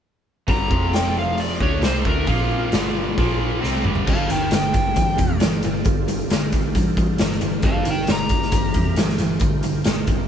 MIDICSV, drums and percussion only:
0, 0, Header, 1, 2, 480
1, 0, Start_track
1, 0, Key_signature, -2, "minor"
1, 0, Tempo, 446097
1, 534, Time_signature, 4, 2, 24, 8
1, 11060, End_track
2, 0, Start_track
2, 0, Title_t, "Drums"
2, 516, Note_on_c, 9, 46, 43
2, 517, Note_on_c, 9, 36, 81
2, 624, Note_off_c, 9, 46, 0
2, 625, Note_off_c, 9, 36, 0
2, 761, Note_on_c, 9, 36, 83
2, 869, Note_off_c, 9, 36, 0
2, 1004, Note_on_c, 9, 46, 45
2, 1016, Note_on_c, 9, 38, 82
2, 1112, Note_off_c, 9, 46, 0
2, 1124, Note_off_c, 9, 38, 0
2, 1481, Note_on_c, 9, 46, 48
2, 1589, Note_off_c, 9, 46, 0
2, 1727, Note_on_c, 9, 36, 82
2, 1835, Note_off_c, 9, 36, 0
2, 1956, Note_on_c, 9, 46, 38
2, 1968, Note_on_c, 9, 38, 86
2, 2064, Note_off_c, 9, 46, 0
2, 2076, Note_off_c, 9, 38, 0
2, 2208, Note_on_c, 9, 36, 83
2, 2316, Note_off_c, 9, 36, 0
2, 2440, Note_on_c, 9, 46, 45
2, 2447, Note_on_c, 9, 36, 78
2, 2547, Note_off_c, 9, 46, 0
2, 2555, Note_off_c, 9, 36, 0
2, 2926, Note_on_c, 9, 46, 43
2, 2938, Note_on_c, 9, 38, 97
2, 3034, Note_off_c, 9, 46, 0
2, 3046, Note_off_c, 9, 38, 0
2, 3420, Note_on_c, 9, 36, 93
2, 3423, Note_on_c, 9, 46, 39
2, 3527, Note_off_c, 9, 36, 0
2, 3531, Note_off_c, 9, 46, 0
2, 3910, Note_on_c, 9, 38, 40
2, 4017, Note_off_c, 9, 38, 0
2, 4135, Note_on_c, 9, 45, 64
2, 4243, Note_off_c, 9, 45, 0
2, 4254, Note_on_c, 9, 43, 63
2, 4361, Note_off_c, 9, 43, 0
2, 4381, Note_on_c, 9, 49, 85
2, 4386, Note_on_c, 9, 36, 83
2, 4488, Note_off_c, 9, 49, 0
2, 4493, Note_off_c, 9, 36, 0
2, 4624, Note_on_c, 9, 42, 59
2, 4732, Note_off_c, 9, 42, 0
2, 4851, Note_on_c, 9, 42, 73
2, 4863, Note_on_c, 9, 38, 94
2, 4959, Note_off_c, 9, 42, 0
2, 4971, Note_off_c, 9, 38, 0
2, 5097, Note_on_c, 9, 42, 52
2, 5105, Note_on_c, 9, 36, 77
2, 5204, Note_off_c, 9, 42, 0
2, 5212, Note_off_c, 9, 36, 0
2, 5337, Note_on_c, 9, 42, 77
2, 5345, Note_on_c, 9, 36, 79
2, 5444, Note_off_c, 9, 42, 0
2, 5452, Note_off_c, 9, 36, 0
2, 5577, Note_on_c, 9, 42, 56
2, 5585, Note_on_c, 9, 36, 73
2, 5685, Note_off_c, 9, 42, 0
2, 5693, Note_off_c, 9, 36, 0
2, 5812, Note_on_c, 9, 42, 73
2, 5824, Note_on_c, 9, 38, 98
2, 5920, Note_off_c, 9, 42, 0
2, 5932, Note_off_c, 9, 38, 0
2, 6054, Note_on_c, 9, 42, 55
2, 6161, Note_off_c, 9, 42, 0
2, 6292, Note_on_c, 9, 42, 68
2, 6302, Note_on_c, 9, 36, 96
2, 6400, Note_off_c, 9, 42, 0
2, 6410, Note_off_c, 9, 36, 0
2, 6544, Note_on_c, 9, 42, 64
2, 6652, Note_off_c, 9, 42, 0
2, 6783, Note_on_c, 9, 42, 77
2, 6794, Note_on_c, 9, 38, 90
2, 6890, Note_off_c, 9, 42, 0
2, 6902, Note_off_c, 9, 38, 0
2, 7020, Note_on_c, 9, 42, 57
2, 7024, Note_on_c, 9, 36, 71
2, 7128, Note_off_c, 9, 42, 0
2, 7132, Note_off_c, 9, 36, 0
2, 7263, Note_on_c, 9, 36, 81
2, 7268, Note_on_c, 9, 42, 75
2, 7370, Note_off_c, 9, 36, 0
2, 7376, Note_off_c, 9, 42, 0
2, 7501, Note_on_c, 9, 36, 77
2, 7502, Note_on_c, 9, 42, 52
2, 7608, Note_off_c, 9, 36, 0
2, 7610, Note_off_c, 9, 42, 0
2, 7730, Note_on_c, 9, 42, 65
2, 7742, Note_on_c, 9, 38, 97
2, 7838, Note_off_c, 9, 42, 0
2, 7849, Note_off_c, 9, 38, 0
2, 7866, Note_on_c, 9, 38, 28
2, 7973, Note_on_c, 9, 42, 47
2, 7974, Note_off_c, 9, 38, 0
2, 8080, Note_off_c, 9, 42, 0
2, 8204, Note_on_c, 9, 42, 67
2, 8212, Note_on_c, 9, 36, 99
2, 8312, Note_off_c, 9, 42, 0
2, 8320, Note_off_c, 9, 36, 0
2, 8449, Note_on_c, 9, 42, 66
2, 8556, Note_off_c, 9, 42, 0
2, 8686, Note_on_c, 9, 42, 70
2, 8698, Note_on_c, 9, 38, 101
2, 8794, Note_off_c, 9, 42, 0
2, 8806, Note_off_c, 9, 38, 0
2, 8923, Note_on_c, 9, 42, 55
2, 8932, Note_on_c, 9, 36, 75
2, 9030, Note_off_c, 9, 42, 0
2, 9039, Note_off_c, 9, 36, 0
2, 9062, Note_on_c, 9, 38, 26
2, 9166, Note_on_c, 9, 42, 86
2, 9170, Note_off_c, 9, 38, 0
2, 9171, Note_on_c, 9, 36, 79
2, 9273, Note_off_c, 9, 42, 0
2, 9279, Note_off_c, 9, 36, 0
2, 9405, Note_on_c, 9, 42, 57
2, 9411, Note_on_c, 9, 36, 68
2, 9513, Note_off_c, 9, 42, 0
2, 9518, Note_off_c, 9, 36, 0
2, 9645, Note_on_c, 9, 42, 73
2, 9657, Note_on_c, 9, 38, 83
2, 9753, Note_off_c, 9, 42, 0
2, 9765, Note_off_c, 9, 38, 0
2, 9784, Note_on_c, 9, 38, 32
2, 9882, Note_on_c, 9, 42, 58
2, 9892, Note_off_c, 9, 38, 0
2, 9989, Note_off_c, 9, 42, 0
2, 10111, Note_on_c, 9, 42, 77
2, 10125, Note_on_c, 9, 36, 95
2, 10218, Note_off_c, 9, 42, 0
2, 10232, Note_off_c, 9, 36, 0
2, 10360, Note_on_c, 9, 42, 58
2, 10467, Note_off_c, 9, 42, 0
2, 10593, Note_on_c, 9, 42, 77
2, 10605, Note_on_c, 9, 38, 101
2, 10700, Note_off_c, 9, 42, 0
2, 10712, Note_off_c, 9, 38, 0
2, 10837, Note_on_c, 9, 42, 52
2, 10843, Note_on_c, 9, 36, 73
2, 10945, Note_off_c, 9, 42, 0
2, 10951, Note_off_c, 9, 36, 0
2, 11060, End_track
0, 0, End_of_file